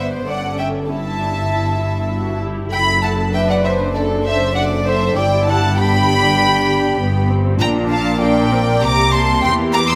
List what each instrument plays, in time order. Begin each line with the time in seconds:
Already playing: double bass section G1, cello section G2, viola section B3 B4, violin section C5
0.28 double bass section G1, cello section G2, viola section C#4 A4, violin section D5 F#5
0.59 violin section E5 G5
0.89 viola section C#4 E4, violin section E5 A5
1.20 viola section D4
1.51 viola section E4
1.82 viola section E4
2.12 viola section F#4
2.43 viola section G4
2.72 double bass section F#1, cello section F#2, viola section A4, violin section G5 B5
3.03 violin section F#5 A5
3.33 viola section D4 B4, violin section E5 G5
3.49 violin section D5 F#5
3.64 violin section C5 E5
3.95 violin section A4 D5, viola section A4
4.25 violin section C5 E5
4.55 viola section D4 A4, violin section D5 F#5
4.86 violin section C5 E5
5.16 double bass section G1, cello section G2, viola section E4 G4, violin section D5 G5
5.47 violin section F#5 A5
5.77 viola section D4, violin section G5 B5
6.99 double bass section G1, cello section G2, viola section B3
7.30 viola section C4
7.60 double bass section A#1, cello section A#2, viola section D4 F4, violin section G5 A#5
7.90 violin section F5 A5
8.21 viola section D4 A#4, violin section D5 G5
8.52 viola section C4
8.81 double bass section C2, cello section C3, viola section A#3 G4, violin section A#5 D6
9.12 violin section A5 C6
9.42 double bass section E2, cello section E3, viola section G4, violin section G5 C6
9.73 violin section A#5 D6
9.88 violin section C6 E6